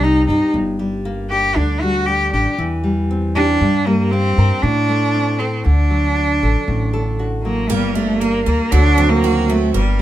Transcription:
Already playing: upright bass C2, nylon-string guitar C3 G3
0.03 nylon-string guitar C4, cello D#4
0.27 upright bass G2, cello D#4, nylon-string guitar G4
0.54 upright bass G1, nylon-string guitar G2
0.79 nylon-string guitar G3
1.05 nylon-string guitar A#3
1.31 nylon-string guitar D4, cello G4
1.56 upright bass D2, nylon-string guitar D3, cello D4
1.81 nylon-string guitar G3, cello F#4
2.06 nylon-string guitar D4, cello G4
2.33 upright bass A1, nylon-string guitar D4, cello G4
2.58 upright bass E2, nylon-string guitar E3
2.84 nylon-string guitar G3
3.11 nylon-string guitar C4
3.36 cello D4, nylon-string guitar G4
3.61 nylon-string guitar G2, upright bass G2
3.86 nylon-string guitar G3, cello A#3
4.12 nylon-string guitar A#3, cello C4
4.38 upright bass G2, nylon-string guitar A#4
4.63 upright bass A2, nylon-string guitar A2, cello D4
4.89 nylon-string guitar A3
5.14 nylon-string guitar C4
5.39 cello C4, nylon-string guitar A4
5.65 upright bass D2, nylon-string guitar D3, cello D4
5.90 nylon-string guitar F#3
6.17 nylon-string guitar D4
6.43 upright bass A1, nylon-string guitar A4
6.67 upright bass A1, nylon-string guitar A2
6.93 nylon-string guitar A4
7.19 nylon-string guitar F#4
7.44 nylon-string guitar F#3, cello A#3
7.70 upright bass G1, nylon-string guitar G2, cello G3, twelve-string acoustic guitar A#3
7.95 nylon-string guitar G3, cello A3, twelve-string acoustic guitar D4
8.20 cello A#3, nylon-string guitar A#3, twelve-string acoustic guitar A#3
8.45 upright bass D2, cello A#3, twelve-string acoustic guitar D4, nylon-string guitar A#4
8.72 upright bass D2, nylon-string guitar D3, twelve-string acoustic guitar F#3, cello D4
8.98 nylon-string guitar F#3, twelve-string acoustic guitar C4
9.10 cello A#3
9.22 nylon-string guitar D#3, twelve-string acoustic guitar F#4
9.48 nylon-string guitar F#3, cello A3, twelve-string acoustic guitar C4
9.74 upright bass G1, nylon-string guitar G2, cello G3, twelve-string acoustic guitar A#3

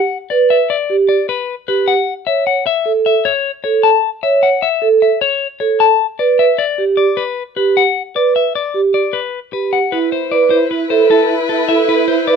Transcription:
Already playing: clean electric guitar F#5
0.30 vibraphone B4, clean electric guitar D5
0.50 clean electric guitar E5
0.70 clean electric guitar D5
0.90 vibraphone G4
1.09 clean electric guitar D5
1.29 clean electric guitar B4
1.68 vibraphone G4, clean electric guitar B4
1.88 clean electric guitar F#5
2.27 vibraphone C#5, clean electric guitar E5
2.47 clean electric guitar F#5
2.66 clean electric guitar E5
2.86 vibraphone A4
3.06 clean electric guitar E5
3.25 clean electric guitar C#5
3.64 vibraphone A4, clean electric guitar C#5
3.83 clean electric guitar A5
4.23 vibraphone C#5, clean electric guitar E5
4.43 clean electric guitar F#5
4.62 clean electric guitar E5
4.82 vibraphone A4
5.02 clean electric guitar E5
5.21 clean electric guitar C#5
5.60 vibraphone A4, clean electric guitar C#5
5.80 clean electric guitar A5
6.19 vibraphone B4, clean electric guitar D5
6.39 clean electric guitar E5
6.58 clean electric guitar D5
6.78 vibraphone G4
6.97 clean electric guitar D5
7.17 clean electric guitar B4
7.56 vibraphone G4, clean electric guitar B4
7.77 clean electric guitar F#5
8.15 vibraphone B4, clean electric guitar D5
8.36 clean electric guitar E5
8.55 clean electric guitar D5
8.74 vibraphone G4
8.94 clean electric guitar D5
9.13 clean electric guitar B4
9.53 vibraphone G4, clean electric guitar B4
9.73 clean electric guitar F#5
9.92 french horn E4, vibraphone E4, string section E4 B4, clean electric guitar B4
10.11 french horn E4, clean electric guitar C5
10.31 french horn E4, vibraphone B4, clean electric guitar D5
10.50 french horn E4, clean electric guitar C5
10.70 french horn E4, clean electric guitar B4
10.90 french horn E4, vibraphone A4, clean electric guitar C5
11.10 french horn E4, clean electric guitar A4
11.30 french horn E4
11.49 french horn E4, clean electric guitar A4
11.69 french horn E4, vibraphone A4, clean electric guitar E5
11.88 vibraphone E4, french horn E4, clean electric guitar B4
12.08 french horn E4, clean electric guitar C5
12.27 french horn E4, vibraphone B4, clean electric guitar D5

